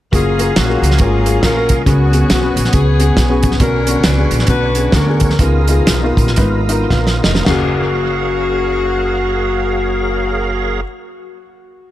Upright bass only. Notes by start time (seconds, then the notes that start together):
0.13 F#1
0.56 A#1
0.82 C#2
1.00 G#1
1.43 A#1
1.70 C2
1.87 C#2
2.30 B1
2.56 A#1
2.74 C#2
3.17 B1
3.60 B1
4.04 C#2
4.31 A#1
4.48 B1
4.93 D2
5.39 C#2
5.88 B1
6.17 A#1
6.38 G#1
6.91 A#1
7.25 F1
7.47 F#1